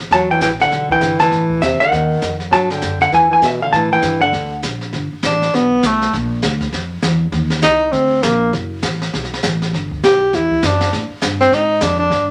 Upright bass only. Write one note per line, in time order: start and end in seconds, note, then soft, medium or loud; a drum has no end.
0.01 0.10 A1 medium
0.11 0.40 E2 medium
0.41 0.70 A1 medium
0.71 1.00 B1 medium
1.01 1.30 G1 medium
1.31 1.61 A1 medium
1.62 1.79 E2 medium
1.92 2.21 D#2 medium
2.22 2.51 F2 medium
2.52 2.81 G2 medium
2.82 3.11 F#2 medium
3.12 3.41 E2 medium
3.42 3.72 B2 medium
3.73 4.02 A2 medium
4.03 4.32 G2 medium
4.33 4.62 D2 medium
4.64 4.92 A#1 medium
4.93 5.10 G1 medium
5.13 muted upright bass stroke soft
5.23 5.52 A1 medium
5.54 5.83 B1 medium
5.83 6.12 C2 medium
6.13 6.42 A#1 medium
6.43 6.72 D2 medium
6.73 7.02 F2 medium
7.02 7.32 E2 loud
7.32 7.62 D#2 medium
7.63 7.92 C2 medium
7.92 8.22 D2 medium
8.23 8.52 A#1 medium
8.53 8.82 F#1 medium
8.83 9.12 A1 medium
9.14 9.42 B1 medium
9.44 9.72 A1 medium
9.73 10.02 G1 medium
10.04 10.32 B1 medium
10.33 10.62 E2 medium
10.63 10.91 F#2 medium
10.93 11.09 A2 medium
11.10 muted upright bass stroke soft
11.22 11.51 G2 loud
11.52 11.80 G#2 medium
11.81 12.10 F2 loud
12.10 12.31 G2 medium